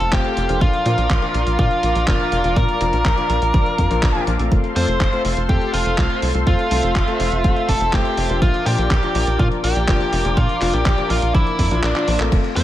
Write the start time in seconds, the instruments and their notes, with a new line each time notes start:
Already playing: lead electric guitar A4, analog synth pad A4 C5 F5 C6
0.00 analog synth bass F1, closed hi-hat
0.12 analog synth bass F1, electric grand piano A3 C4 F4 A4, lead electric guitar G4, kick, clap, closed hi-hat
0.25 closed hi-hat
0.37 analog synth bass F1, closed hi-hat
0.49 analog synth bass F1, electric grand piano A#2 F3 A#3 D4 F4, closed hi-hat
0.61 analog synth bass A#1, lead electric guitar F4, analog synth pad A#4 D5 D6, kick, closed hi-hat
0.73 closed hi-hat
0.86 analog synth bass A#2, electric grand piano A#2 F3 A#3 D4 F4, closed hi-hat
0.98 analog synth bass A#1, closed hi-hat
1.10 analog synth bass A#1, kick, clap, closed hi-hat
1.22 electric grand piano A#2 F3 A#3 D4 F4, closed hi-hat
1.34 analog synth bass A#1, closed hi-hat
1.47 analog synth bass A#1, closed hi-hat
1.59 electric grand piano A#2 F3 A#3 D4 F4, analog synth bass A#2, lead electric guitar F4, kick, closed hi-hat
1.71 closed hi-hat
1.83 analog synth bass A#1, closed hi-hat
1.95 analog synth bass A#1, closed hi-hat
2.08 analog synth bass F1, electric grand piano A#2 F3 A#3 D4 F4, lead electric guitar F4, kick, clap, closed hi-hat
2.20 closed hi-hat
2.32 analog synth bass F1, closed hi-hat
2.44 analog synth bass F1, electric grand piano A#2 F3 A#3 D4 F4, closed hi-hat
2.56 analog synth bass A#2, lead electric guitar A#4, kick, closed hi-hat
2.69 closed hi-hat
2.81 analog synth bass F1, electric grand piano A#2 F3 A#3 D4 F4, closed hi-hat
2.93 analog synth bass A#1, closed hi-hat
3.05 analog synth bass A#1, kick, clap, closed hi-hat
3.17 electric grand piano A#2 F3 A#3 D4 F4, closed hi-hat
3.30 analog synth bass A#1, closed hi-hat
3.42 analog synth bass A#1, closed hi-hat
3.54 analog synth bass A#1, electric grand piano A#2 F3 A#3 D4 F4, kick, closed hi-hat
3.66 closed hi-hat
3.78 analog synth bass F2, kick, closed hi-hat
3.91 analog synth bass A#1, electric grand piano A#2 F3 A#3 D4 F4, closed hi-hat
4.03 analog synth bass A#1, kick, clap, closed hi-hat
4.15 electric grand piano A#2 F3 A#3 D4 F4, closed hi-hat
4.27 analog synth bass A#1, electric grand piano F3 A#3 D4 F4, closed hi-hat
4.39 analog synth bass A#1, electric grand piano A3 C4 F4 A4, closed hi-hat
4.52 analog synth bass F1, analog synth pad A4 C5 C6, kick, closed hi-hat
4.64 closed hi-hat
4.76 analog synth bass F2, electric grand piano A3 C4 F4 A4, lead electric guitar C5, open hi-hat
4.88 analog synth bass F1, closed hi-hat
5.00 analog synth bass F1, kick, clap, closed hi-hat
5.13 electric grand piano A3 C4 F4 A4, closed hi-hat
5.25 analog synth bass F1, open hi-hat
5.37 analog synth bass F1, closed hi-hat
5.49 analog synth bass F2, electric grand piano A3 C4 F4 A4, lead electric guitar G4, kick, closed hi-hat
5.61 closed hi-hat
5.74 analog synth bass F1, lead electric guitar F4, open hi-hat
5.86 analog synth bass F1, closed hi-hat
5.98 analog synth bass C2, electric grand piano A3 C4 F4 A4, kick, clap, closed hi-hat
6.10 closed hi-hat
6.22 analog synth bass C2, open hi-hat
6.35 analog synth bass C2, electric grand piano A3 C4 F4 A4, closed hi-hat
6.47 analog synth bass F2, lead electric guitar F4, analog synth pad E5, kick, closed hi-hat
6.59 closed hi-hat
6.71 analog synth bass C2, electric grand piano A3 C4 F4 A4, open hi-hat
6.83 analog synth bass F1, closed hi-hat
6.95 analog synth bass F1, kick, clap, closed hi-hat
7.08 electric grand piano A3 C4 F4 A4, closed hi-hat
7.20 analog synth bass F1, open hi-hat
7.32 analog synth bass F1, closed hi-hat
7.44 analog synth bass F1, electric grand piano A3 C4 F4 A4, kick, closed hi-hat
7.56 closed hi-hat
7.69 analog synth bass F1, lead electric guitar A4, kick, open hi-hat
7.81 analog synth bass F1, closed hi-hat
7.93 analog synth bass F1, electric grand piano A3 C4 F4 A4, lead electric guitar G4, kick, clap, closed hi-hat
8.05 closed hi-hat
8.17 analog synth bass F1, open hi-hat
8.30 analog synth bass F1, electric grand piano A#2 F3 A#3 D4 F4, closed hi-hat
8.42 analog synth bass A#1, lead electric guitar F4, analog synth pad A#4 D5 D6, kick, closed hi-hat
8.54 closed hi-hat
8.66 analog synth bass A#2, electric grand piano A#2 F3 A#3 D4 F4, lead electric guitar G4, open hi-hat
8.78 analog synth bass A#1, closed hi-hat
8.91 analog synth bass A#1, kick, clap, closed hi-hat
9.03 electric grand piano A#2 F3 A#3 D4 F4, closed hi-hat
9.15 analog synth bass A#1, open hi-hat
9.27 analog synth bass A#1, closed hi-hat
9.39 analog synth bass A#2, electric grand piano A#2 F3 A#3 D4 F4, lead electric guitar F4, kick, closed hi-hat
9.52 closed hi-hat
9.64 analog synth bass A#1, lead electric guitar G4, open hi-hat
9.76 analog synth bass A#1, closed hi-hat
9.88 analog synth bass F1, electric grand piano A#2 F3 A#3 D4 F4, kick, clap, closed hi-hat
10.01 closed hi-hat
10.13 analog synth bass F1, open hi-hat
10.25 analog synth bass F1, electric grand piano A#2 F3 A#3 D4 F4, closed hi-hat
10.37 analog synth bass A#2, lead electric guitar F4, kick, closed hi-hat
10.49 closed hi-hat
10.61 analog synth bass F1, electric grand piano A#2 F3 A#3 D4 F4, clap, open hi-hat
10.74 analog synth bass A#1, lead electric guitar G4, closed hi-hat
10.86 analog synth bass A#1, kick, clap, closed hi-hat
10.98 electric grand piano A#2 F3 A#3 D4 F4, closed hi-hat
11.10 analog synth bass A#1, lead electric guitar F4, open hi-hat
11.22 analog synth bass A#1, closed hi-hat
11.34 analog synth bass A#1, electric grand piano A#2 F3 A#3 D4, lead electric guitar E4, kick, closed hi-hat
11.47 closed hi-hat
11.59 analog synth bass F2, kick, open hi-hat
11.71 analog synth bass A#1, electric grand piano A#2 F3 A#3 D4 F4, closed hi-hat
11.83 analog synth bass A#1, lead electric guitar D4, clap, closed hi-hat
11.96 electric grand piano A#2 F3 A#3 D4 F4, clap, closed hi-hat
12.08 analog synth bass A#1, electric grand piano F3 A#3 D4 F4, open hi-hat
12.20 analog synth bass A#1, electric grand piano A3 C4 F4 A4, clap, closed hi-hat
12.32 analog synth bass F1, analog synth pad A4 C5 F5 C6, kick, closed hi-hat, crash
12.44 closed hi-hat
12.56 analog synth bass F2, electric grand piano A3 C4 F4 A4, lead electric guitar C5, open hi-hat